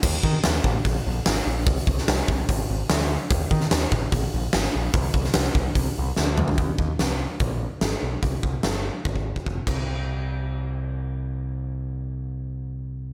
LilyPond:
<<
  \new Staff \with { instrumentName = "Picked electric bass" } { \clef bass \time 4/4 \key c \minor \tempo 4 = 146 ees,8 ees8 ees,8 a,,8 bes,,8 bes,,8 aes,,8 bes,,8 | c,8 c,8 c,8 c,8 aes,,8 aes,,8 d,4 | ees,8 ees8 ees,8 a,,8 bes,,8 bes,,8 aes,,8 bes,,8 | c,8 c,8 c,8 c,8 c,8 c,8 d,4 |
ees,8 ees,8 c,4 bes,,4 aes,,8 ces,8 | c,8 c,8 g,,4 aes,,4 f,,8 c,8~ | c,1~ | c,1 | }
  \new DrumStaff \with { instrumentName = "Drums" } \drummode { \time 4/4 <cymc bd>8 bd8 <hho sn>8 bd8 <hho bd>4 <hho sn>4 | <hho bd>8 bd16 sn16 <hho sn>8 bd8 <hho bd>4 <hho sn>16 sn8. | <hho bd>8 bd16 sn16 <hho sn>8 bd8 <hho bd>4 <hho sn>16 sn8. | <hho bd>8 bd16 sn16 <hho sn>8 bd8 <hho bd>4 sn8 toml16 tomfh16 |
<hho bd>8 bd8 <hho sn>4 <hho bd>4 <hho sn>4 | <hho bd>8 bd8 <hho sn>4 bd16 bd8 bd16 bd8 <cymc bd>8 | r4 r4 r4 r4 | r4 r4 r4 r4 | }
>>